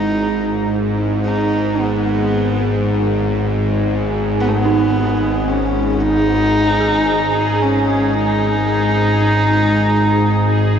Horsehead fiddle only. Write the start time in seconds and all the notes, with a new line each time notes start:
Already playing: D#4
1.25 D#4
1.80 B3
4.40 B3
4.48 A3
4.56 B3
5.48 C#4
6.01 D#4
7.62 C#4
8.13 D#4